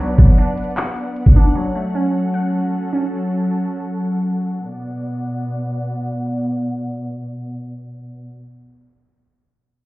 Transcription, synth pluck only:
0, 0, Header, 1, 2, 480
1, 0, Start_track
1, 0, Key_signature, 2, "minor"
1, 0, Tempo, 392157
1, 1905, Time_signature, 4, 2, 24, 8
1, 12058, End_track
2, 0, Start_track
2, 0, Title_t, "Synth pluck"
2, 0, Program_c, 0, 84
2, 0, Note_on_c, 0, 54, 94
2, 0, Note_on_c, 0, 62, 73
2, 0, Note_on_c, 0, 78, 85
2, 225, Note_off_c, 0, 78, 0
2, 227, Note_on_c, 0, 59, 74
2, 451, Note_off_c, 0, 62, 0
2, 466, Note_on_c, 0, 62, 79
2, 943, Note_on_c, 0, 78, 84
2, 1184, Note_off_c, 0, 54, 0
2, 1426, Note_off_c, 0, 59, 0
2, 1650, Note_off_c, 0, 62, 0
2, 1664, Note_on_c, 0, 62, 81
2, 1904, Note_off_c, 0, 62, 0
2, 1904, Note_off_c, 0, 78, 0
2, 1904, Note_on_c, 0, 54, 89
2, 2144, Note_on_c, 0, 57, 73
2, 2384, Note_on_c, 0, 61, 79
2, 2863, Note_on_c, 0, 78, 81
2, 3104, Note_off_c, 0, 54, 0
2, 3344, Note_off_c, 0, 57, 0
2, 3569, Note_off_c, 0, 61, 0
2, 3584, Note_on_c, 0, 61, 72
2, 4064, Note_off_c, 0, 78, 0
2, 4784, Note_off_c, 0, 61, 0
2, 12058, End_track
0, 0, End_of_file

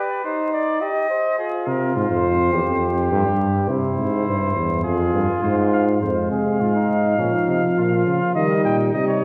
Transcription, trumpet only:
0, 0, Header, 1, 2, 480
1, 0, Start_track
1, 0, Key_signature, -4, "minor"
1, 0, Tempo, 573614
1, 1161, Time_signature, 4, 2, 24, 8
1, 3089, Tempo, 582524
1, 7663, End_track
2, 0, Start_track
2, 0, Title_t, "Trumpet"
2, 0, Program_c, 0, 56
2, 0, Note_on_c, 0, 71, 85
2, 207, Note_on_c, 0, 72, 95
2, 220, Note_off_c, 0, 71, 0
2, 437, Note_off_c, 0, 72, 0
2, 442, Note_on_c, 0, 74, 84
2, 673, Note_off_c, 0, 74, 0
2, 678, Note_on_c, 0, 75, 91
2, 1149, Note_off_c, 0, 75, 0
2, 1158, Note_on_c, 0, 68, 82
2, 1399, Note_on_c, 0, 70, 70
2, 1411, Note_off_c, 0, 68, 0
2, 1639, Note_off_c, 0, 70, 0
2, 1644, Note_on_c, 0, 72, 94
2, 2834, Note_off_c, 0, 72, 0
2, 3084, Note_on_c, 0, 72, 84
2, 4010, Note_off_c, 0, 72, 0
2, 4033, Note_on_c, 0, 68, 78
2, 4510, Note_off_c, 0, 68, 0
2, 4519, Note_on_c, 0, 72, 72
2, 4629, Note_off_c, 0, 72, 0
2, 4764, Note_on_c, 0, 77, 73
2, 4873, Note_off_c, 0, 77, 0
2, 5002, Note_on_c, 0, 77, 69
2, 6897, Note_off_c, 0, 77, 0
2, 6925, Note_on_c, 0, 75, 87
2, 7164, Note_off_c, 0, 75, 0
2, 7172, Note_on_c, 0, 79, 82
2, 7280, Note_off_c, 0, 79, 0
2, 7414, Note_on_c, 0, 75, 89
2, 7525, Note_off_c, 0, 75, 0
2, 7530, Note_on_c, 0, 73, 73
2, 7663, Note_off_c, 0, 73, 0
2, 7663, End_track
0, 0, End_of_file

